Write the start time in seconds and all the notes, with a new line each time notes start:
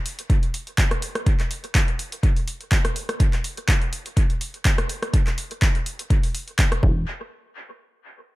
0.06 open hi-hat
0.19 closed hi-hat
0.30 kick, closed hi-hat
0.43 closed hi-hat
0.54 open hi-hat
0.67 closed hi-hat
0.78 kick, clap, closed hi-hat
0.91 cross-stick, closed hi-hat
1.02 open hi-hat
1.15 cross-stick, closed hi-hat
1.26 kick, closed hi-hat
1.40 clap, closed hi-hat
1.51 open hi-hat
1.64 closed hi-hat
1.75 kick, clap, closed hi-hat
1.88 closed hi-hat
1.99 open hi-hat
2.12 closed hi-hat
2.23 kick, closed hi-hat
2.37 open hi-hat
2.48 open hi-hat
2.61 closed hi-hat
2.72 kick, clap, closed hi-hat
2.85 cross-stick, closed hi-hat
2.96 open hi-hat
3.09 cross-stick, closed hi-hat
3.20 kick, closed hi-hat
3.33 clap, closed hi-hat
3.44 open hi-hat
3.57 closed hi-hat
3.68 kick, clap, closed hi-hat
3.82 closed hi-hat
3.93 open hi-hat
4.06 closed hi-hat
4.17 kick, closed hi-hat
4.30 closed hi-hat
4.41 open hi-hat
4.54 closed hi-hat
4.65 kick, clap, closed hi-hat
4.78 cross-stick, closed hi-hat
4.89 open hi-hat
5.03 cross-stick, closed hi-hat
5.14 kick, closed hi-hat
5.27 clap, closed hi-hat
5.38 open hi-hat
5.51 closed hi-hat
5.62 kick, clap, closed hi-hat
5.75 closed hi-hat
5.86 open hi-hat
5.99 closed hi-hat
6.10 kick, closed hi-hat
6.23 open hi-hat
6.35 open hi-hat
6.48 closed hi-hat
6.59 kick, clap, closed hi-hat
6.72 cross-stick, closed hi-hat
6.83 E1, kick